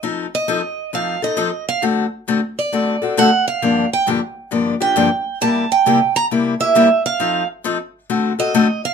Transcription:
X:1
M:4/4
L:1/8
Q:"Swing" 1/4=134
K:Fmix
V:1 name="Steel-string acoustic guitar"
z e3 f e2 f | z3 d3 ^f =f- | f g z3 g3 | a g2 b z =e2 f- |
f z4 e2 f |]
V:2 name="Steel-string acoustic guitar"
[F,CEA] z [F,CEA] z [F,CEA] [CEA] [F,CEA] z | [D,A,C^FA] z [D,A,CFA] z [D,A,CFA] [CFA] [D,A,CFA] z | [G,,D,F,B,DG] z [G,,D,F,B,DG] z [G,,D,F,B,DG] [F,B,DG] [G,,D,F,B,DG] z | [C,G,B,=EG] z [C,G,B,EG] z [C,G,B,EG] [B,EG] [C,G,B,EG] z |
[F,CEA] z [F,CEA] z [D,A,C^FA] [CFA] [D,A,CFA] z |]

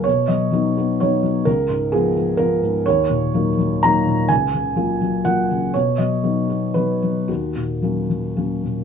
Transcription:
X:1
M:3/4
L:1/8
Q:1/4=126
K:Ebm
V:1 name="Felt piano"
d ^d3 _d2 | B2 A2 B2 | d4 b2 | a4 g2 |
d ^d3 =B2 | G4- G z |]
V:2 name="Felt piano" clef=bass
=B,, ^F, [F,=B,^D] B, [F,B,D] F, | D,, A,, [F,CF] F, [F,CF] A,, | E,, B,, [G,B,E] G, [G,B,E] B,, | D,, D, [G,B,F] G, [G,B,F] D, |
=B,, ^F, [F,=B,^D] B, [F,B,D] F, | E,, B,, [G,B,D] G, [G,B,D] B,, |]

